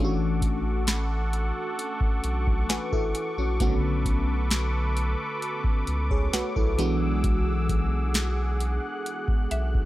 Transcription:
0.00 1.52 A1 loud
0.00 1.22 E3 medium
0.00 1.22 A3 medium
0.00 1.22 C#4 medium
0.00 1.22 D4 medium
0.00 3.57 A4 medium
0.00 3.57 F#5 medium
0.00 0.38 G#5 medium
0.00 6.74 C#6 medium
0.00 9.85 D6 medium
0.05 1.26 F#4 loud
0.42 kick medium
0.42 closed hi-hat medium
0.87 3.50 B5 medium
0.87 snare loud
0.87 closed hi-hat medium
1.33 closed hi-hat medium
1.79 closed hi-hat medium
2.01 kick loud
2.24 2.65 B1 medium
2.24 closed hi-hat medium
2.47 kick medium
2.69 2.79 A1 soft
2.69 2.92 F#4 medium
2.69 2.91 B4 medium
2.69 4.02 G#5 medium
2.69 snare loud
2.69 closed hi-hat medium
2.92 3.13 A1 medium
2.92 3.36 E4 medium
2.92 3.36 A4 medium
2.92 kick medium
3.15 closed hi-hat medium
3.38 3.58 A#1 medium
3.38 3.60 C#4 medium
3.38 3.61 F#4 medium
3.60 5.15 B1 loud
3.60 3.67 C#3 medium
3.60 4.85 A3 medium
3.60 4.86 B3 medium
3.60 4.86 C#4 medium
3.60 4.86 F#4 loud
3.60 6.75 A4 medium
3.60 6.75 B4 medium
3.60 kick loud
3.60 closed hi-hat medium
3.67 4.88 D3 medium
4.05 kick medium
4.05 closed hi-hat medium
4.51 snare loud
4.51 closed hi-hat medium
4.97 closed hi-hat medium
5.42 closed hi-hat medium
5.64 kick loud
5.87 6.29 C#2 medium
5.87 closed hi-hat medium
6.11 6.32 G#4 medium
6.11 6.32 C#5 medium
6.11 kick medium
6.33 6.42 B1 soft
6.33 6.55 F#4 medium
6.33 6.55 B4 medium
6.33 7.20 F#5 medium
6.33 snare loud
6.33 closed hi-hat medium
6.56 6.77 B1 medium
6.56 6.99 E4 medium
6.56 6.99 A4 medium
6.56 kick medium
6.78 8.79 B1 loud
6.78 8.24 E3 medium
6.78 8.24 G#3 medium
6.78 8.24 B3 medium
6.78 8.24 D4 medium
6.78 8.25 F#4 loud
6.78 9.85 G#4 medium
6.78 9.85 F#5 medium
6.78 8.58 E6 medium
6.78 closed hi-hat medium
7.24 kick loud
7.24 closed hi-hat medium
7.69 kick medium
7.69 closed hi-hat medium
8.14 snare loud
8.14 closed hi-hat medium
8.60 9.85 F#6 medium
8.60 closed hi-hat medium
9.06 closed hi-hat medium
9.28 kick loud
9.51 9.85 B1 medium
9.51 9.85 E5 medium
9.51 closed hi-hat medium
9.75 kick medium

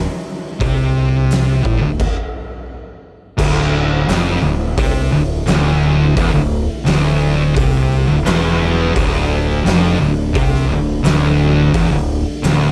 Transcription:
0.00 1.95 D3 medium
0.00 1.96 G3 medium
0.00 1.95 E4 medium
0.60 1.61 C2 medium
0.60 1.63 C3 loud
0.60 kick loud
0.60 open hi-hat medium
1.31 snare loud
1.31 open hi-hat medium
1.63 1.81 A1 medium
1.63 1.80 A2 loud
1.63 kick loud
1.82 1.99 D1 medium
1.82 1.99 D2 medium
2.00 kick loud
2.00 crash loud
3.38 4.04 D1 medium
3.38 4.07 D2 loud
3.38 12.72 D3 medium
3.38 12.72 A3 medium
3.38 8.91 E4 medium
3.38 kick loud
3.38 crash loud
4.07 4.41 F1 loud
4.07 4.41 F2 loud
4.07 snare loud
4.07 open hi-hat medium
4.42 4.75 D1 medium
4.42 4.70 D2 medium
4.78 5.10 C2 loud
4.78 5.12 C3 loud
4.78 kick loud
4.78 open hi-hat medium
5.12 5.45 D1 medium
5.12 5.40 D2 medium
5.46 6.13 D1 loud
5.46 6.15 D2 loud
5.46 snare loud
5.46 open hi-hat medium
6.16 6.33 E1 loud
6.16 6.33 E2 loud
6.16 kick loud
6.16 open hi-hat medium
6.33 6.67 D1 medium
6.33 6.62 D2 medium
6.85 7.52 D1 loud
6.85 7.54 D2 loud
6.85 snare loud
6.85 open hi-hat medium
7.55 8.05 C2 loud
7.55 8.07 C3 loud
7.55 kick loud
7.55 open hi-hat medium
8.08 8.25 D1 medium
8.08 8.25 D2 medium
8.25 8.92 E1 loud
8.25 8.94 E2 loud
8.25 snare loud
8.25 open hi-hat medium
8.95 9.61 D1 loud
8.95 9.64 D2 loud
8.95 12.72 D4 medium
8.95 kick loud
8.95 open hi-hat medium
9.65 9.98 F1 loud
9.65 9.99 F2 loud
9.65 snare loud
9.65 open hi-hat medium
10.01 10.33 D1 medium
10.01 10.28 D2 medium
10.35 10.68 C2 loud
10.35 10.69 C3 loud
10.35 kick loud
10.35 open hi-hat medium
10.54 snare soft
10.69 11.02 D1 medium
10.69 10.97 D2 medium
11.04 11.70 D1 loud
11.04 11.73 D2 loud
11.04 snare loud
11.04 open hi-hat medium
11.74 11.90 E1 loud
11.74 11.91 E2 loud
11.74 kick loud
11.74 open hi-hat medium
11.92 12.24 D1 medium
11.92 12.19 D2 medium
12.44 12.72 D1 loud
12.44 12.72 D2 loud
12.44 snare loud
12.44 open hi-hat medium

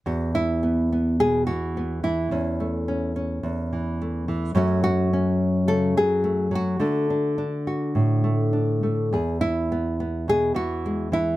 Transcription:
0.06 2.30 E2 medium
0.06 0.34 F#4 soft
0.35 1.20 E4 medium
0.63 0.91 B3 soft
0.92 1.76 B3 soft
1.20 1.49 B2 medium
1.20 1.46 G#4 medium
1.47 2.02 E3 soft
1.47 2.03 F#4 medium
1.77 2.30 B3 soft
2.03 2.29 E3 soft
2.03 3.72 E4 medium
2.31 3.42 E2 medium
2.31 2.88 C#4 soft
2.60 4.01 A3 soft
2.88 3.16 C#4 soft
3.16 4.52 C#4 soft
3.43 4.54 E2 medium
3.73 4.27 E3 soft
4.02 4.55 A3 soft
4.28 4.53 E3 medium
4.55 6.76 F#2 medium
4.55 5.95 F#3 soft
4.55 6.23 A3 soft
4.55 5.12 C#4 soft
4.55 4.83 F#4 soft
4.84 5.68 F#4 medium
5.13 6.78 C#4 soft
5.68 5.96 C#3 medium
5.68 5.96 A4 medium
5.97 6.50 F#3 medium
5.97 6.53 G#4 medium
6.24 6.77 A3 soft
6.51 6.76 F#3 medium
6.55 7.66 F#4 medium
6.80 9.11 D3 medium
6.80 8.23 A3 soft
6.80 7.09 D4 soft
7.10 7.37 D4 soft
7.38 8.52 D4 soft
7.67 9.09 F#4 soft
7.95 9.12 A2 medium
8.24 8.82 A3 medium
8.53 9.08 D4 soft
8.83 9.08 A3 soft
9.13 11.37 E2 medium
9.13 9.41 G#4 soft
9.41 10.27 E4 medium
9.72 9.99 B3 soft
10.00 11.37 B3 soft
10.28 10.56 B2 soft
10.28 10.56 G#4 medium
10.54 11.11 E3 medium
10.54 11.13 F#4 medium
10.86 11.37 G#3 soft
11.12 11.37 E3 medium
11.12 11.37 E4 medium

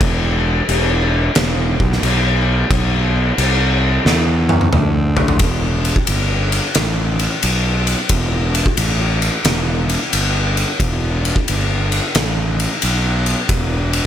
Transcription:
0.01 0.60 E1 loud
0.01 kick loud
0.01 crash medium
0.68 1.28 E1 loud
0.68 crash medium
1.35 1.75 E1 medium
1.35 snare loud
1.35 crash medium
1.80 2.01 B1 loud
1.80 kick medium
1.92 snare soft
2.02 2.62 B1 medium
2.02 crash medium
2.70 3.30 B1 medium
2.70 kick loud
2.70 crash medium
3.38 3.97 C2 loud
3.38 crash medium
4.05 4.65 E2 medium
4.05 snare medium
4.49 high tom medium
4.61 high tom medium
4.73 5.42 D2 medium
4.73 mid tom medium
5.17 floor tom medium
5.28 floor tom loud
5.39 5.91 E1 medium
5.39 kick loud
5.39 ride medium
5.85 ride medium
5.96 kick medium
6.07 6.59 G1 loud
6.07 ride loud
6.52 ride medium
6.75 7.26 A1 medium
6.75 snare loud
6.75 ride loud
7.19 ride medium
7.43 7.94 B1 medium
7.43 ride medium
7.87 ride medium
8.09 8.61 E1 medium
8.09 kick loud
8.09 ride loud
8.55 ride medium
8.66 kick medium
8.77 9.28 A1 loud
8.77 ride loud
9.22 ride medium
9.44 9.95 E1 medium
9.44 snare loud
9.44 ride medium
9.89 ride medium
10.13 10.63 G1 medium
10.13 ride loud
10.57 ride medium
10.80 11.30 E1 medium
10.80 kick loud
10.80 ride medium
11.25 ride medium
11.36 kick medium
11.48 11.99 G1 loud
11.48 ride medium
11.92 ride medium
12.15 12.65 A1 medium
12.15 snare loud
12.15 ride medium
12.60 ride medium
12.82 13.33 B1 medium
12.82 ride medium
13.26 ride medium
13.49 14.00 E1 medium
13.49 kick loud
13.49 ride medium
13.93 ride medium

